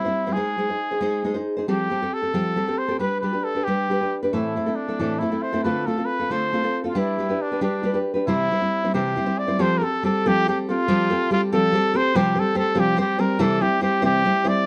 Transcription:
Already playing: trumpet E4
0.05 nylon-string guitar G3 C4 E4 C5
0.27 nylon-string guitar G3 C4 E4 C5
0.33 nylon-string guitar G#3 D#4, trumpet G#4
0.37 nylon-string guitar G#4 C5
0.58 nylon-string guitar G#3 D#4 G#4 C5
0.69 nylon-string guitar D#4 G#4 C5
0.91 nylon-string guitar D#4 G#4 C5
1.01 nylon-string guitar G#3 D#4 G#4 C5
1.24 nylon-string guitar G#3 D#4 G#4 C5
1.34 nylon-string guitar D#4 G#4 C5
1.57 nylon-string guitar D#4 G#4 C5
1.68 nylon-string guitar F3 G3 C4 G4 A4, trumpet G4
1.90 nylon-string guitar G3 C4 G4 A4
2.02 nylon-string guitar C4 G4 A4
2.13 trumpet A4
2.22 nylon-string guitar C4 G4 A4
2.34 nylon-string guitar F3 G3 C4 G4 A4
2.56 nylon-string guitar G3 C4 G4 A4
2.68 nylon-string guitar C4 G4 A4
2.78 trumpet C5
2.88 nylon-string guitar C4 G4 A4
2.99 nylon-string guitar G3 D4 G4 B4, trumpet B4
3.20 nylon-string guitar G3 D4 G4, trumpet B4
3.24 nylon-string guitar B4
3.33 nylon-string guitar D4 G4 B4
3.44 trumpet A4
3.55 nylon-string guitar D4 G4 B4
3.64 nylon-string guitar G3 D4 G4, trumpet G4
3.68 nylon-string guitar B4
3.89 nylon-string guitar G3 D4 G4 B4
4.01 nylon-string guitar D4 G4 B4
4.23 nylon-string guitar D4 G4 B4
4.33 nylon-string guitar A2 E3 A3 C4 E4 A4, trumpet E4
4.56 nylon-string guitar A3 C4 E4 A4
4.66 nylon-string guitar A3 C4 E4 A4
4.75 trumpet D4
4.88 nylon-string guitar A3 C4 E4 A4
4.99 nylon-string guitar A2 E3 A3 C4 E4 A4
5.19 nylon-string guitar A3 C4 E4 A4, trumpet E4
5.32 nylon-string guitar A3 C4 E4 A4
5.42 trumpet C5
5.53 nylon-string guitar A3 C4 E4 A4
5.63 nylon-string guitar D3 A3 C4 F4 A4, trumpet B4
5.86 nylon-string guitar A3 C4 F4 A4, trumpet A4
5.98 nylon-string guitar C4 F4 A4
6.05 trumpet B4
6.19 nylon-string guitar C4 F4 A4
6.30 nylon-string guitar D3 A3 C4 F4 A4, trumpet C5
6.53 nylon-string guitar A3 C4 F4 A4
6.64 nylon-string guitar C4 F4 A4
6.84 nylon-string guitar C4 F4 A4
6.89 trumpet F4
6.95 nylon-string guitar G3 D4 G4 B4
6.99 trumpet E4
7.18 nylon-string guitar G3 D4 G4 B4
7.29 nylon-string guitar D4 G4 B4
7.42 trumpet D4
7.52 nylon-string guitar D4 G4 B4
7.61 nylon-string guitar G3 D4 G4 B4, trumpet D4
7.83 nylon-string guitar G3 D4 G4 B4
7.94 nylon-string guitar D4 G4 B4
8.14 nylon-string guitar D4 G4 B4
8.27 nylon-string guitar C3 E3 G3 C4 E4 C5, trumpet E4
8.51 nylon-string guitar G3 C4 E4 C5
8.61 nylon-string guitar G3 C4 E4 C5
8.84 nylon-string guitar G3 C4 E4 C5
8.94 nylon-string guitar C3 E3 G3 C4 E4 C5, trumpet G4
9.16 nylon-string guitar G3 C4 E4 C5
9.26 nylon-string guitar G3 C4 E4 C5
9.38 trumpet D5
9.47 nylon-string guitar G3 C4 E4 C5
9.59 nylon-string guitar F3 G3 C4 G4 A4, trumpet C5
9.78 nylon-string guitar A4, trumpet A#4
9.82 nylon-string guitar C4 G4, trumpet A4
10.03 nylon-string guitar G3 C4 G4 A4, trumpet A4
10.26 nylon-string guitar F3 G3 C4 G4 A4, trumpet G4
10.48 nylon-string guitar G3 C4 G4 A4, trumpet G4
10.69 nylon-string guitar C4 G4 A4, trumpet F4
10.88 nylon-string guitar F3 G3 C4 G4 A4
11.10 nylon-string guitar C4 G4 A4
11.31 nylon-string guitar G3 C4 G4 A4, trumpet F4
11.52 nylon-string guitar F3 G3 C4 G4 A4, trumpet A4
11.73 nylon-string guitar G3 C4 G4 A4
11.94 nylon-string guitar C4 G4 A4, trumpet C5
12.15 nylon-string guitar C3 F3 G3 C4 G4 C5, trumpet G4
12.35 nylon-string guitar G3 C4 G4 C5
12.39 trumpet A4
12.55 nylon-string guitar G3 C4 G4 C5, trumpet A4
12.75 nylon-string guitar C3 F3 G3 C4 G4 C5
12.79 trumpet G4
12.96 nylon-string guitar G3 C4 G4 C5
13.01 trumpet G4
13.18 nylon-string guitar G3 C4 G4 C5, trumpet A#4
13.39 nylon-string guitar C3 E3 G3 C4 E4 C5, trumpet A4
13.60 nylon-string guitar G3 C4 E4 C5, trumpet G4
13.81 nylon-string guitar G3 C4 E4 C5, trumpet G4
14.02 nylon-string guitar C3 E3 G3 C4 E4 C5, trumpet G4
14.25 nylon-string guitar G3 C4 E4 C5
14.44 nylon-string guitar G3 C4 E4 C5, trumpet D5

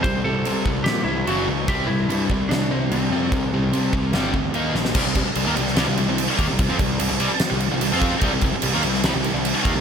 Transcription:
0.03 picked electric bass C2, distorted electric guitar C3 G3, lead electric guitar C5, kick, crash
0.24 picked electric bass C2, distorted electric guitar C3 G3, lead electric guitar A4
0.45 picked electric bass C3, distorted electric guitar C3 G3, crash
0.65 picked electric bass C2, distorted electric guitar C3 G3, kick
0.84 picked electric bass A#2, distorted electric guitar G3, lead electric guitar G4, snare, crash
0.88 distorted electric guitar C3
1.04 picked electric bass C2, distorted electric guitar C3, lead electric guitar E4
1.09 distorted electric guitar G3
1.27 picked electric bass F#1, distorted electric guitar F#2 C#3 F#3, lead electric guitar F#4, crash
1.48 picked electric bass C#2, distorted electric guitar F#2 C#3
1.68 picked electric bass C2, distorted electric guitar C3 G3 C4, lead electric guitar G4, kick, crash
1.87 picked electric bass C2, distorted electric guitar C3 G3, lead electric guitar E4
2.08 picked electric bass G2, distorted electric guitar C3 G3, crash
2.30 picked electric bass C2, distorted electric guitar C3 G3, kick
2.49 picked electric bass C2, distorted electric guitar C3 G3, lead electric guitar D4, snare, crash
2.71 distorted electric guitar C3 G3, lead electric guitar C4
2.90 picked electric bass C2, distorted electric guitar C3 G3, lead electric guitar C4, crash
3.10 picked electric bass F2, distorted electric guitar C3 G3
3.32 picked electric bass C2, distorted electric guitar C3 G3, kick, crash
3.52 picked electric bass C2, distorted electric guitar C3 G3
3.72 picked electric bass C3, distorted electric guitar C3 G3, crash
3.93 picked electric bass C2, distorted electric guitar C3 G3, kick
4.12 picked electric bass G1, distorted electric guitar G2 D3 G3, snare, crash
4.34 picked electric bass D2, distorted electric guitar G2 D3, kick
4.54 picked electric bass D#2, distorted electric guitar D#3 A#3 D#4, crash
4.74 picked electric bass A#1, distorted electric guitar D#3 A#3, snare
4.85 snare
4.95 picked electric bass C2, distorted electric guitar C3 G3, kick, crash
5.04 picked electric bass C2, distorted electric guitar C3 G3
5.15 picked electric bass C2, distorted electric guitar C3 G3, kick, crash
5.25 muted picked electric bass stroke, muted distorted electric guitar stroke
5.35 picked electric bass C2, distorted electric guitar C3 G3, crash
5.46 picked electric bass D#2, distorted electric guitar D#3 A#3
5.56 picked electric bass C2, distorted electric guitar C3 G3, crash
5.67 snare
5.76 picked electric bass C2, distorted electric guitar C3 G3, snare, crash
5.87 picked electric bass C2, distorted electric guitar C3 G3
5.97 picked electric bass C2, distorted electric guitar C3 G3, crash
6.08 picked electric bass C2, distorted electric guitar C3 G3
6.18 crash
6.37 picked electric bass D#2, distorted electric guitar D#3 A#3, kick, crash
6.48 picked electric bass C2, distorted electric guitar C3 G3
6.59 picked electric bass C2, distorted electric guitar C3 G3, kick, crash
6.69 picked electric bass F2, distorted electric guitar F3 C4
6.79 picked electric bass C2, distorted electric guitar C3 G3, kick, crash
7.00 picked electric bass C2, distorted electric guitar C3 G3, crash
7.09 picked electric bass C2, distorted electric guitar C3 G3
7.20 picked electric bass C2, distorted electric guitar C3 G3, crash
7.30 muted distorted electric guitar stroke, muted picked electric bass stroke
7.40 snare, crash
7.50 picked electric bass C2, distorted electric guitar C3 G3
7.60 crash
7.71 picked electric bass C2, distorted electric guitar C3 G3
7.81 picked electric bass C2, distorted electric guitar C3 G3, crash
7.92 picked electric bass F2, distorted electric guitar F3 C4 F4
8.01 kick, crash
8.12 muted picked electric bass stroke, muted distorted electric guitar stroke
8.21 picked electric bass C2, distorted electric guitar C3 G3, kick, crash
8.32 picked electric bass C2, distorted electric guitar C3 G3
8.41 picked electric bass C2, distorted electric guitar C3 G3, kick, crash
8.53 muted picked electric bass stroke, muted distorted electric guitar stroke
8.62 picked electric bass C2, distorted electric guitar C3 G3, crash
8.73 picked electric bass D#2, distorted electric guitar D#3 A#3
8.83 picked electric bass C2, distorted electric guitar C3 G3, crash
8.94 snare
9.04 picked electric bass C2, distorted electric guitar C3 G3, snare, crash
9.15 picked electric bass C2, distorted electric guitar C3 G3
9.23 picked electric bass C2, distorted electric guitar C3 G3, crash
9.33 picked electric bass C2, distorted electric guitar C3 G3
9.45 crash
9.63 picked electric bass D#2, distorted electric guitar D#3 A#3, kick, crash
9.75 picked electric bass C2, distorted electric guitar C3 G3

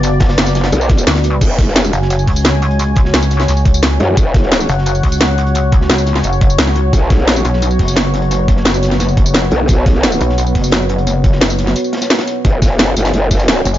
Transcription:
Already playing: wobble bass F#1, analog synth pad B3 F#4 D5
0.03 closed hi-hat, tambourine
0.20 kick, snare, closed hi-hat
0.29 snare, closed hi-hat
0.37 wobble bass F#1, snare, closed hi-hat, tambourine
0.46 snare, closed hi-hat, tambourine
0.55 snare, closed hi-hat, tambourine
0.64 snare, closed hi-hat
0.72 wobble bass B1, closed hi-hat, tambourine
0.81 tambourine
0.89 kick, snare, closed hi-hat
0.97 closed hi-hat, tambourine
1.07 wobble bass D2, snare, closed hi-hat, tambourine
1.15 snare, closed hi-hat
1.24 closed hi-hat, tambourine
1.41 wobble bass F#1, analog synth pad F#4 C#5 G#5, kick, closed hi-hat, tambourine, crash
1.59 kick, snare, closed hi-hat
1.68 snare
1.76 snare, closed hi-hat, tambourine
1.84 tambourine
1.93 wobble bass F#1, closed hi-hat, tambourine
2.02 snare
2.10 closed hi-hat, tambourine
2.19 tambourine
2.27 wobble bass C#2, kick, closed hi-hat, open hi-hat
2.36 tambourine
2.45 snare, closed hi-hat, tambourine
2.62 closed hi-hat
2.71 closed hi-hat
2.79 closed hi-hat, tambourine
2.96 kick, closed hi-hat
3.05 snare
3.14 wobble bass C#2, snare, closed hi-hat, tambourine
3.22 tambourine
3.31 snare, closed hi-hat, tambourine
3.40 snare
3.48 wobble bass C#2, snare, closed hi-hat, tambourine
3.57 tambourine
3.65 kick, closed hi-hat
3.74 tambourine
3.82 snare, closed hi-hat, tambourine
4.00 wobble bass F#2, closed hi-hat
4.17 wobble bass F#1, analog synth pad F#5, kick, closed hi-hat, tambourine
4.34 kick, snare, closed hi-hat
4.43 snare
4.51 snare, closed hi-hat, tambourine
4.60 tambourine
4.69 wobble bass F#1, closed hi-hat, tambourine
4.78 snare
4.86 closed hi-hat, tambourine
4.95 tambourine
5.03 wobble bass C#2, kick, closed hi-hat, open hi-hat
5.12 tambourine
5.21 snare, closed hi-hat, tambourine
5.38 closed hi-hat
5.47 closed hi-hat
5.55 closed hi-hat, tambourine
5.72 kick, closed hi-hat
5.81 snare
5.90 wobble bass C#2, snare, closed hi-hat, tambourine
5.98 tambourine
6.06 snare, closed hi-hat, tambourine
6.15 snare
6.23 wobble bass F#1, closed hi-hat, tambourine
6.33 tambourine
6.41 kick, closed hi-hat
6.50 tambourine
6.58 wobble bass C#2, snare, closed hi-hat, tambourine
6.67 snare
6.75 closed hi-hat
6.93 wobble bass B1, analog synth pad B3, kick, closed hi-hat, tambourine
7.10 kick, snare, closed hi-hat
7.18 snare
7.27 snare, closed hi-hat, tambourine
7.36 tambourine
7.44 wobble bass B1, closed hi-hat, tambourine
7.53 snare
7.62 closed hi-hat, tambourine
7.71 tambourine
7.79 wobble bass F#1, kick, closed hi-hat, open hi-hat
7.88 tambourine
7.96 snare, closed hi-hat, tambourine
8.14 closed hi-hat
8.22 closed hi-hat
8.31 closed hi-hat, tambourine
8.48 kick, closed hi-hat
8.57 snare
8.65 wobble bass F#1, snare, closed hi-hat, tambourine
8.74 tambourine
8.83 snare, closed hi-hat, tambourine
8.91 snare
9.00 wobble bass F#1, snare, closed hi-hat, tambourine
9.09 tambourine
9.17 kick, closed hi-hat
9.26 tambourine
9.34 snare, closed hi-hat, tambourine
9.51 wobble bass B1, closed hi-hat
9.68 wobble bass B1, kick, closed hi-hat, tambourine
9.86 kick, snare, closed hi-hat
9.95 snare
10.03 snare, closed hi-hat, tambourine
10.12 tambourine
10.21 wobble bass B1, closed hi-hat, tambourine
10.29 snare
10.38 closed hi-hat, tambourine
10.47 tambourine
10.55 wobble bass F#1, kick, closed hi-hat, open hi-hat
10.64 tambourine
10.72 snare, closed hi-hat, tambourine
10.89 closed hi-hat
10.98 closed hi-hat
11.07 closed hi-hat, tambourine
11.24 kick, closed hi-hat
11.32 snare
11.41 wobble bass F#1, snare, closed hi-hat, tambourine
11.50 tambourine
11.59 snare, closed hi-hat, tambourine
11.66 snare
11.76 closed hi-hat, tambourine
11.84 tambourine
11.93 snare, closed hi-hat
11.97 snare, closed hi-hat
12.01 snare, closed hi-hat, tambourine
12.10 snare, closed hi-hat, tambourine
12.15 snare, closed hi-hat
12.19 snare, closed hi-hat
12.27 closed hi-hat, tambourine
12.45 wobble bass F#1, analog synth pad F#4 C#5 G#5, kick, closed hi-hat
12.62 kick, snare, closed hi-hat, tambourine
12.71 snare
12.78 snare, closed hi-hat
12.96 wobble bass F#1, closed hi-hat, tambourine
13.05 snare, tambourine
13.13 wobble bass F#1, closed hi-hat
13.31 kick, closed hi-hat, open hi-hat, tambourine
13.40 tambourine
13.48 snare, closed hi-hat
13.65 wobble bass F#1, closed hi-hat, tambourine
13.74 closed hi-hat, tambourine

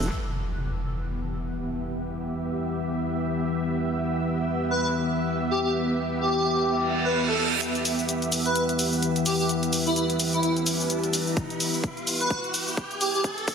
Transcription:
Already playing: wobble bass E1, analog synth pad E5
0.02 shaker
0.12 analog synth pad E3 E4 G4 B4, ambient pad B3, impact
0.52 ambient pad G4
0.95 ambient pad E5
4.71 digital synth lead B4
5.51 digital synth lead G4
5.64 digital synth lead G4
6.21 digital synth lead G4
6.68 reverse cymbal
7.05 digital synth lead B4
7.28 digital synth lead A4
7.38 digital synth lead A4
7.62 analog synth pad E3 E4 G4 B4, closed hi-hat, riser, shaker
7.75 closed hi-hat, shaker
7.85 open hi-hat, shaker
7.99 shaker
8.09 closed hi-hat, shaker
8.22 closed hi-hat, shaker
8.32 open hi-hat, shaker
8.46 digital synth lead B4, closed hi-hat, shaker
8.56 closed hi-hat, shaker
8.69 closed hi-hat, shaker
8.79 open hi-hat, shaker
8.93 shaker
9.02 closed hi-hat, shaker
9.16 closed hi-hat, shaker
9.26 digital synth lead G4, open hi-hat, shaker
9.39 digital synth lead G4, shaker
9.49 closed hi-hat, shaker
9.63 closed hi-hat, shaker
9.73 open hi-hat, shaker
9.86 digital synth lead E4, shaker
9.96 digital synth lead E4, closed hi-hat, shaker
10.10 closed hi-hat, shaker
10.20 open hi-hat, shaker
10.33 digital synth lead E4, closed hi-hat, shaker
10.43 digital synth lead E4, closed hi-hat, shaker
10.56 closed hi-hat, shaker
10.66 open hi-hat, shaker
10.80 shaker
10.90 closed hi-hat, shaker
11.03 closed hi-hat, shaker
11.13 open hi-hat, shaker
11.27 shaker
11.37 kick, closed hi-hat, shaker
11.50 closed hi-hat, shaker
11.60 open hi-hat, shaker
11.74 shaker
11.84 kick, closed hi-hat, shaker
11.97 closed hi-hat, shaker
12.07 open hi-hat, shaker
12.20 digital synth lead B4, closed hi-hat, shaker
12.30 kick, closed hi-hat, shaker
12.44 closed hi-hat, shaker
12.54 open hi-hat, shaker
12.68 shaker
12.77 kick, closed hi-hat, shaker
12.91 closed hi-hat, shaker
13.01 digital synth lead G4, open hi-hat, shaker
13.14 digital synth lead G4, shaker
13.24 kick, closed hi-hat, shaker
13.38 closed hi-hat, shaker
13.48 kick, open hi-hat, shaker

